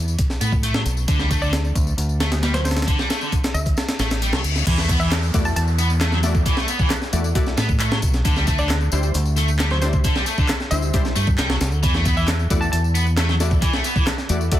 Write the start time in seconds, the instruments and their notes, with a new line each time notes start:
Already playing: fingered electric bass E2
0.08 tambourine
0.19 kick, closed hi-hat, tambourine
0.30 snare, tambourine
0.41 fingered electric bass A2, distorted electric guitar B3, closed hi-hat, tambourine
0.52 kick, tambourine
0.63 distorted electric guitar A3, closed hi-hat, tambourine
0.74 distorted electric guitar F#3, snare, tambourine
0.86 fingered electric bass B1, closed hi-hat, tambourine
0.97 tambourine
1.08 fingered electric bass D2, distorted electric guitar D3, kick, closed hi-hat, tambourine
1.19 distorted electric guitar G3, snare, tambourine
1.31 distorted electric guitar A3, kick, closed hi-hat, tambourine
1.42 distorted electric guitar D3, synth pluck D5, tambourine
1.53 snare, closed hi-hat, tambourine
1.64 tambourine
1.75 fingered electric bass D2, kick, closed hi-hat, tambourine
1.87 tambourine
1.97 fingered electric bass D2, closed hi-hat, tambourine
2.09 tambourine
2.20 distorted electric guitar A3, snare, closed hi-hat, tambourine
2.32 snare, closed hi-hat, tambourine
2.43 distorted electric guitar G3, snare, closed hi-hat, tambourine
2.54 distorted electric guitar F#3, synth pluck C5, snare, closed hi-hat, tambourine
2.65 synth pluck C5, snare, closed hi-hat, tambourine
2.71 snare, closed hi-hat
2.76 snare, closed hi-hat, tambourine
2.82 snare, closed hi-hat
2.87 distorted electric guitar D3, kick, closed hi-hat, tambourine
2.99 distorted electric guitar G3, snare, tambourine
3.10 distorted electric guitar A3, snare, closed hi-hat, tambourine
3.21 distorted electric guitar D3, tambourine
3.32 kick, closed hi-hat, tambourine
3.44 snare, closed hi-hat, tambourine
3.54 fingered electric bass D2, synth pluck E5, tambourine
3.66 kick, closed hi-hat, tambourine
3.77 snare, closed hi-hat, tambourine, reverse cymbal
3.88 snare, closed hi-hat, tambourine
3.99 fingered electric bass A1, distorted electric guitar A3, snare, closed hi-hat, tambourine
4.11 snare, closed hi-hat, tambourine
4.22 distorted electric guitar G3, closed hi-hat, tambourine
4.33 fingered electric bass C2, distorted electric guitar F#3, snare, tambourine
4.44 fingered electric bass D2, closed hi-hat, tambourine
4.56 snare, tambourine
4.67 fingered electric bass E2, distorted electric guitar E3, kick, closed hi-hat, crash, tambourine, downlifter
4.78 distorted electric guitar A3, snare, tambourine
4.89 distorted electric guitar B3, kick, closed hi-hat, tambourine
5.00 distorted electric guitar E3, synth pluck E5, tambourine
5.12 snare, clap, closed hi-hat, tambourine
5.23 tambourine
5.34 fingered electric bass E2, synth stab A3 E4 F#4 D5, kick, closed hi-hat, tambourine
5.45 synth pluck A5, tambourine
5.56 fingered electric bass E2, synth pluck A5, closed hi-hat, tambourine
5.68 tambourine
5.78 distorted electric guitar B3, closed hi-hat, tambourine
5.90 tambourine
6.01 distorted electric guitar A3, snare, clap, closed hi-hat, tambourine
6.12 distorted electric guitar F#3, snare, tambourine
6.23 synth stab A3 E4 F#4 D5, snare, closed hi-hat, tambourine
6.35 kick, tambourine
6.46 distorted electric guitar E3, kick, closed hi-hat, tambourine
6.57 distorted electric guitar A3, snare, tambourine
6.68 distorted electric guitar B3, closed hi-hat, tambourine
6.79 distorted electric guitar E3, kick, tambourine
6.90 snare, clap, closed hi-hat, tambourine
7.02 snare, tambourine
7.13 fingered electric bass E2, synth stab A3 E4 F#4 D5, closed hi-hat, tambourine
7.24 tambourine
7.35 synth stab A3 E4 F#4 D5, kick, closed hi-hat, tambourine
7.46 snare, tambourine
7.57 fingered electric bass A2, distorted electric guitar B3, snare, closed hi-hat, tambourine
7.69 kick, tambourine
7.80 distorted electric guitar A3, clap, closed hi-hat, tambourine
7.91 distorted electric guitar F#3, snare, tambourine
8.02 fingered electric bass B1, kick, closed hi-hat, tambourine
8.13 snare, tambourine
8.25 fingered electric bass D2, distorted electric guitar D3, kick, closed hi-hat, tambourine
8.36 distorted electric guitar G3, snare, tambourine
8.47 distorted electric guitar A3, kick, closed hi-hat, tambourine
8.58 distorted electric guitar D3, synth pluck D5, tambourine
8.69 snare, clap, closed hi-hat, tambourine
8.81 tambourine
8.92 fingered electric bass D2, synth stab G3 D4 E4 C5, tambourine
9.03 tambourine
9.14 fingered electric bass D2, closed hi-hat, tambourine
9.25 tambourine
9.36 distorted electric guitar A3, closed hi-hat, tambourine
9.48 tambourine
9.59 distorted electric guitar G3, snare, clap, closed hi-hat
9.70 distorted electric guitar F#3, synth pluck C5, snare, tambourine
9.82 synth stab G3 D4 E4 C5, synth pluck C5, snare, closed hi-hat, tambourine
9.93 kick, tambourine
10.04 distorted electric guitar D3, kick, closed hi-hat, tambourine
10.15 distorted electric guitar G3, snare, tambourine
10.26 distorted electric guitar A3, closed hi-hat, tambourine
10.38 distorted electric guitar D3, kick, tambourine
10.49 snare, clap, closed hi-hat, tambourine
10.60 snare, tambourine
10.71 fingered electric bass D2, synth stab G3 D4 E4 C5, synth pluck E5, closed hi-hat, tambourine
10.82 tambourine
10.93 synth stab G3 D4 E4 C5, kick, closed hi-hat, tambourine
11.05 snare, tambourine
11.16 fingered electric bass G2, distorted electric guitar A3, closed hi-hat, tambourine
11.27 kick, tambourine
11.38 fingered electric bass C2, distorted electric guitar G3, snare, clap, closed hi-hat, tambourine
11.49 distorted electric guitar F#3, snare, tambourine
11.61 fingered electric bass C2, snare, closed hi-hat, tambourine
11.72 fingered electric bass D2, tambourine
11.83 fingered electric bass E2, distorted electric guitar E3, kick, closed hi-hat, tambourine
11.94 distorted electric guitar A3, snare, tambourine
12.05 distorted electric guitar B3, kick, closed hi-hat, tambourine
12.17 distorted electric guitar E3, synth pluck E5, tambourine
12.28 snare, clap, closed hi-hat, tambourine
12.39 tambourine
12.50 fingered electric bass E2, synth stab A3 E4 F#4 D5, kick, closed hi-hat, tambourine
12.61 synth pluck A5, tambourine
12.72 fingered electric bass E2, synth pluck A5, closed hi-hat, tambourine
12.84 tambourine
12.95 distorted electric guitar B3, closed hi-hat, tambourine
13.07 tambourine
13.17 distorted electric guitar A3, snare, clap, closed hi-hat, tambourine
13.29 distorted electric guitar F#3, snare, tambourine
13.40 synth stab A3 E4 F#4 D5, snare, closed hi-hat, tambourine
13.51 kick, tambourine
13.62 distorted electric guitar E3, kick, closed hi-hat, tambourine
13.73 distorted electric guitar A3, snare, tambourine
13.84 distorted electric guitar B3, closed hi-hat, tambourine
13.96 distorted electric guitar E3, kick, tambourine
14.07 snare, clap, closed hi-hat, tambourine
14.18 snare, tambourine
14.29 fingered electric bass E2, synth stab A3 E4 F#4 D5, closed hi-hat, tambourine
14.41 tambourine
14.52 synth stab A3 E4 F#4 D5, kick, closed hi-hat, tambourine